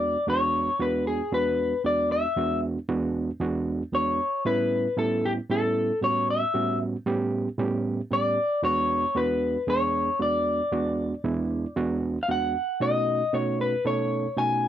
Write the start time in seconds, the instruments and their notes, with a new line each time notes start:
Already playing: reed electric piano E2 G#3 B3 D4 F#4, clean electric guitar D5
0.27 reed electric piano E2 G#3 B3 D4 F#4, clean electric guitar C#5
0.79 reed electric piano E2 G#3 B3 D4 F#4, clean electric guitar B4
1.07 clean electric guitar G#4
1.32 reed electric piano E2 G#3 B3 D4 F#4, clean electric guitar B4
1.84 reed electric piano E2 G#3 B3 D4 F#4, clean electric guitar D5
2.12 clean electric guitar E5
2.36 reed electric piano E2 G#3 B3 D4 F#4
2.88 reed electric piano E2 G#3 B3 D4 F#4
3.40 reed electric piano E2 G#3 B3 D4 F#4
3.92 reed electric piano E2 G#3 B3 D4 F#4, clean electric guitar C#5
4.45 reed electric piano A2 G3 B3 C#4 E4, clean electric guitar B4
4.97 reed electric piano A2 G3 B3 C#4 E4, clean electric guitar A4
5.25 clean electric guitar G4
5.49 reed electric piano A2 G3 B3 C#4 E4, clean electric guitar A4
6.02 reed electric piano A2 G3 B3 C#4 F#4, clean electric guitar C#5
6.30 clean electric guitar E5
6.54 reed electric piano A2 G3 B3 C#4 F#4
7.06 reed electric piano A2 G3 B3 C#4 G4
7.58 reed electric piano A2 G3 B3 C#4 G4
8.10 reed electric piano A2 G3 B3 C#4 G4, clean electric guitar D5
8.62 reed electric piano E2 G#3 B3 D4 F#4, clean electric guitar C#5
9.15 reed electric piano E2 G#3 B3 D4 F#4, clean electric guitar B4
9.67 reed electric piano E2 G#3 B3 D4 G#4, clean electric guitar C#5
10.19 reed electric piano E2 G#3 B3 D4 F#4, clean electric guitar D5
10.72 reed electric piano E2 G#3 B3 D4 F#4
11.24 reed electric piano E2 G#3 B3 D4 E4
11.76 reed electric piano E2 G#3 B3 D4 F#4
12.23 clean electric guitar F5
12.28 reed electric piano E2 G#3 B3 D4 F#4, clean electric guitar F#5
12.80 reed electric piano B2 A3 C#4 D#4 F#4, clean electric guitar D#5
13.33 reed electric piano B2 A3 C#4 D#4 F#4, clean electric guitar C#5
13.61 clean electric guitar B4
13.85 reed electric piano B2 A3 C#4 D#4 A4, clean electric guitar C#5
14.36 reed electric piano B2 A3 C#4 D#4 F#4, clean electric guitar G#5